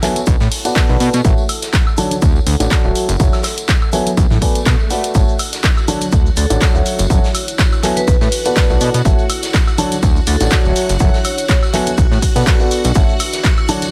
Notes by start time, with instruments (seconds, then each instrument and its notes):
Already playing: ambient pad E4 A4 C#5 F#5
0.02 upright piano B3 F#4 A4 C#5 E5 G#5, clap, open hi-hat, high conga, shaker
0.16 closed hi-hat, tambourine, high conga
0.26 analog synth bass B1, ambient pad D4, kick, closed hi-hat, tambourine, shaker
0.40 analog synth bass A2, snare, tambourine
0.52 open hi-hat
0.65 upright piano B3 F#4 A4 B4 D5 F#5, closed hi-hat, tambourine
0.71 ambient pad B4
0.76 upright piano F#4, kick, snare, clap, closed hi-hat, tambourine, shaker
0.89 analog synth bass B1, upright piano B3 F#4 A4 B4 D5 F#5, tambourine
1.00 analog synth bass B2, open hi-hat, shaker
1.13 analog synth bass B2, closed hi-hat, tambourine
1.25 analog synth bass A1, upright piano A3 F#4 A4 C#5 E5 F#5, ambient pad E4, kick, closed hi-hat, tambourine, shaker
1.38 ambient pad C#5, tambourine
1.49 open hi-hat, high woodblock, shaker
1.62 snare, closed hi-hat, tambourine
1.73 kick, snare, clap, closed hi-hat, tambourine, shaker
1.87 tambourine, high woodblock
1.97 upright piano D3 F#4 A4 C#5 D5 A5, ambient pad D4, open hi-hat, high conga, shaker
2.11 closed hi-hat, tambourine, high conga
2.22 analog synth bass D2, kick, closed hi-hat, tambourine, shaker
2.36 tambourine
2.47 analog synth bass D2, open hi-hat, shaker
2.60 analog synth bass A1, upright piano D3 F#4 A4 C#5 D5 F#5, closed hi-hat, tambourine
2.70 upright piano F#3 C#5 D5, kick, snare, clap, closed hi-hat, tambourine, shaker
2.84 analog synth bass D1, upright piano F#3 F#4 A4 C#5 E5 F#5, tambourine
2.95 ambient pad E4, open hi-hat, shaker
3.09 analog synth bass F#1, closed hi-hat, tambourine
3.19 analog synth bass F#1, upright piano F#3 F#4 A4 C#5 E5 F#5, kick, closed hi-hat, tambourine, shaker
3.33 snare, tambourine, high woodblock
3.43 snare, open hi-hat, high woodblock, shaker
3.58 closed hi-hat, tambourine
3.68 kick, snare, clap, closed hi-hat, tambourine, shaker
3.82 tambourine, high woodblock
3.92 upright piano B3 F#4 A4 C#5 E5 G#5, open hi-hat, high conga, shaker
4.06 closed hi-hat, tambourine, high conga
4.17 analog synth bass B1, ambient pad D4, kick, closed hi-hat, tambourine, swell, shaker
4.30 analog synth bass A2, ambient pad B4, snare, tambourine, high conga
4.41 upright piano B3 F#4 A4 B4 D5 G#5, kick, open hi-hat, high conga
4.55 closed hi-hat, tambourine
4.66 analog synth bass B2, kick, snare, clap, closed hi-hat, tambourine, shaker
4.80 tambourine
4.90 upright piano A3 F#4 A4 B4 D5 F#5, open hi-hat, shaker
5.04 closed hi-hat, tambourine
5.14 analog synth bass A1, upright piano A3 F#4 A4 C#5 E5 F#5, ambient pad E4, string machine F#4 F#5, kick, closed hi-hat, tambourine, shaker
5.25 ambient pad C#5, tambourine
5.29 shaker
5.39 open hi-hat, high woodblock, shaker
5.53 snare, closed hi-hat, tambourine, shaker
5.63 kick, snare, clap, closed hi-hat, tambourine, shaker
5.77 tambourine, high woodblock, shaker
5.88 upright piano D3 F#4 A4 C#5 D5 A5, ambient pad D4, open hi-hat, high conga, shaker
6.01 closed hi-hat, tambourine, high conga, shaker
6.12 analog synth bass D2, kick, closed hi-hat, tambourine, shaker
6.26 tambourine, shaker
6.37 analog synth bass D2, vibraphone A4, open hi-hat, shaker
6.50 analog synth bass A1, upright piano D3 F#4 A4 C#5 D5 F#5, closed hi-hat, tambourine, shaker
6.61 upright piano F#3 F#4 A4 C#5 D5, kick, snare, clap, closed hi-hat, tambourine, shaker
6.75 analog synth bass D1, upright piano F#3 F#4 A4 C#5 E5 F#5, tambourine, shaker
6.86 ambient pad E4, open hi-hat, shaker
6.99 analog synth bass F#1, closed hi-hat, tambourine, shaker
7.10 analog synth bass F#1, upright piano F#3 F#4 A4 C#5 E5 F#5, kick, closed hi-hat, tambourine, shaker
7.24 snare, tambourine, shaker
7.35 open hi-hat, high woodblock, shaker
7.48 closed hi-hat, tambourine, shaker
7.58 kick, snare, clap, closed hi-hat, tambourine, shaker
7.72 tambourine, high woodblock, shaker
7.83 upright piano B3 F#4 A4 C#5 E5 G#5, clap, open hi-hat, high conga, shaker
7.96 vibraphone B4, closed hi-hat, tambourine, high conga, shaker
8.07 analog synth bass B1, ambient pad D4, kick, closed hi-hat, tambourine, shaker
8.21 analog synth bass A2, vibraphone B4, snare, tambourine, shaker
8.32 open hi-hat, shaker
8.45 upright piano B3 F#4 A4 B4 D5 F#5, closed hi-hat, tambourine, shaker
8.52 ambient pad B4, tambourine
8.56 upright piano A4, kick, snare, clap, closed hi-hat, shaker
8.69 analog synth bass B1, upright piano B3 F#4 A4 B4 D5 F#5, tambourine, shaker
8.81 analog synth bass B2, open hi-hat, shaker
8.94 analog synth bass B2, closed hi-hat, tambourine, shaker
9.05 analog synth bass A1, upright piano A3 F#4 A4 C#5 E5 F#5, ambient pad E4, kick, closed hi-hat, tambourine, shaker
9.18 tambourine, shaker
9.25 ambient pad C#5
9.30 open hi-hat, high woodblock, shaker
9.43 snare, closed hi-hat, tambourine, shaker
9.54 kick, snare, clap, closed hi-hat, tambourine, shaker
9.67 tambourine, high woodblock, shaker
9.78 upright piano D3 F#4 A4 C#5 D5 A5, ambient pad D4, open hi-hat, high conga, shaker
9.92 closed hi-hat, tambourine, high conga, shaker
10.03 analog synth bass D2, kick, closed hi-hat, tambourine, shaker
10.16 tambourine, shaker
10.27 analog synth bass D2, vibraphone A4, open hi-hat, shaker
10.40 analog synth bass A1, upright piano D3 F#4 A4 C#5 D5 F#5, closed hi-hat, tambourine, shaker
10.51 upright piano F#3 F#4 A4 C#5 D5 F#5, kick, snare, clap, closed hi-hat, tambourine, shaker
10.65 analog synth bass D1, upright piano F#3 F#4 A4 C#5 E5 F#5, tambourine, shaker
10.76 ambient pad E4, open hi-hat, shaker
10.89 analog synth bass F#1, closed hi-hat, tambourine, shaker
10.99 analog synth bass F#1, upright piano F#3 F#4 A4 C#5 E5 F#5, kick, closed hi-hat, tambourine, shaker
11.14 snare, tambourine, shaker
11.24 vibraphone C#5, open hi-hat, high woodblock, shaker
11.38 closed hi-hat, tambourine, shaker
11.49 kick, snare, clap, closed hi-hat, tambourine, shaker
11.63 tambourine, high woodblock, shaker
11.73 upright piano B3 F#4 A4 C#5 E5 G#5, clap, open hi-hat, high conga, shaker
11.86 closed hi-hat, tambourine, high conga, shaker
11.97 analog synth bass B1, ambient pad D4, kick, closed hi-hat, tambourine, shaker
12.11 analog synth bass A2, snare, tambourine, shaker
12.22 ambient pad B4, kick, open hi-hat, shaker
12.36 analog synth bass B2, upright piano B3 F#4 A4 B4 D5 F#5, closed hi-hat, tambourine, shaker
12.46 upright piano B3 F#4 A4 B4 D5 F#5, kick, snare, clap, closed hi-hat, tambourine, shaker
12.60 upright piano B3 F#4 A4 B4 D5 F#5, tambourine, shaker
12.71 open hi-hat, shaker
12.84 analog synth bass B1, closed hi-hat, tambourine, shaker
12.95 analog synth bass A1, upright piano A3 F#4 A4 C#5 E5 F#5, ambient pad E4, kick, closed hi-hat, tambourine, shaker
13.09 tambourine, shaker
13.20 open hi-hat, high woodblock, shaker
13.26 ambient pad C#5
13.33 snare, closed hi-hat, tambourine, shaker
13.43 kick, snare, clap, closed hi-hat, tambourine, shaker
13.57 tambourine, high woodblock, shaker
13.68 upright piano D3 F#4 A4 C#5 D5 A5, ambient pad D4, open hi-hat, high conga, shaker
13.82 closed hi-hat, tambourine, high conga, shaker